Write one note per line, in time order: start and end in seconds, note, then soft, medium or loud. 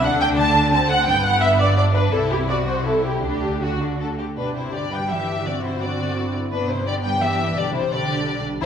0.03 1.07 D2 medium
0.03 1.07 D3 medium
0.03 0.71 D4 medium
0.03 0.20 F#5 loud
0.03 0.10 F#5 medium
0.21 0.28 G5 loud
0.21 0.28 G5 medium
0.38 0.71 A5 medium
0.38 0.72 A5 loud
0.72 1.07 C4 medium
0.72 0.89 A5 medium
0.72 0.80 A5 loud
0.89 1.07 F#5 medium
0.89 1.07 F#5 loud
1.06 2.13 G1 medium
1.06 2.13 G2 medium
1.06 1.77 B3 medium
1.06 1.24 G5 medium
1.06 1.24 G5 loud
1.24 1.42 F#5 medium
1.24 1.42 F#5 loud
1.41 1.48 E5 medium
1.41 1.59 E5 loud
1.59 1.76 D5 medium
1.59 1.67 D5 loud
1.77 2.12 D4 medium
1.77 1.84 D5 loud
1.77 1.84 D5 medium
1.94 2.12 B4 medium
1.94 2.02 B4 medium
2.12 3.20 C2 medium
2.12 3.20 C3 medium
2.12 2.49 E4 medium
2.12 2.20 A4 loud
2.12 2.31 A4 medium
2.31 2.38 G4 medium
2.31 2.39 G4 medium
2.49 2.86 F#4 medium
2.49 2.56 D5 medium
2.49 2.57 D5 medium
2.67 2.85 C5 medium
2.67 2.86 C5 medium
2.85 3.24 E4 medium
2.85 3.04 A4 medium
2.85 2.94 A4 medium
3.04 3.22 G4 medium
3.23 4.17 D2 medium
3.23 4.17 D3 medium
3.23 3.58 D4 medium
3.23 3.61 G4 medium
3.62 4.19 F#4 medium
3.62 3.79 F#4 medium
3.80 4.00 D4 medium
3.99 4.07 A4 medium
4.19 4.26 G4 medium
4.36 6.48 G1 medium
4.36 4.54 B2 medium
4.36 4.70 D4 soft
4.36 4.54 D4 medium
4.36 4.70 G4 soft
4.36 4.54 B4 medium
4.55 4.73 C3 medium
4.55 4.72 E4 medium
4.55 4.73 C5 medium
4.73 4.91 D3 medium
4.73 5.44 D4 soft
4.73 4.91 G4 medium
4.73 5.44 G4 soft
4.73 4.91 D5 medium
4.91 5.09 G3 medium
4.91 4.98 B4 medium
4.91 5.10 G5 medium
5.09 5.45 E3 medium
5.09 5.45 G4 medium
5.09 5.45 E5 medium
5.45 5.63 D3 medium
5.45 5.80 C4 medium
5.45 5.80 F#4 soft
5.45 5.63 F#4 soft
5.45 5.64 D5 medium
5.63 5.71 C3 soft
5.63 5.82 E4 medium
5.63 5.81 C5 medium
5.81 6.34 D3 medium
5.81 6.51 C4 medium
5.81 6.35 F#4 medium
5.81 6.16 F#4 soft
5.81 6.35 D5 medium
6.17 6.53 E4 soft
6.52 7.55 G1 medium
6.52 6.69 B2 medium
6.52 6.86 B3 medium
6.52 6.69 D4 medium
6.52 6.86 D4 medium
6.52 6.68 B4 medium
6.70 6.87 C3 medium
6.70 6.88 E4 medium
6.70 6.87 C5 medium
6.87 7.05 D3 medium
6.87 7.56 B3 medium
6.87 7.56 D4 medium
6.87 7.05 G4 medium
6.87 6.94 D5 medium
7.04 7.22 G3 medium
7.04 7.12 B4 medium
7.04 7.22 G5 medium
7.22 7.57 E3 medium
7.22 7.56 G4 medium
7.22 7.57 E5 medium
7.56 8.60 B1 medium
7.56 7.75 D3 medium
7.56 7.91 G3 medium
7.56 7.91 D4 medium
7.56 7.74 G4 medium
7.56 7.74 D5 medium
7.74 7.92 C3 medium
7.74 7.82 E4 medium
7.74 7.92 C5 medium
7.92 8.43 D3 medium
7.92 8.60 G3 medium
7.92 8.60 D4 medium
7.92 8.43 G4 medium
7.92 8.45 D5 medium
8.62 8.66 E2 medium
8.62 8.66 C3 medium
8.62 8.66 G3 medium
8.62 8.66 C4 medium
8.62 8.66 E4 medium
8.62 8.66 C5 loud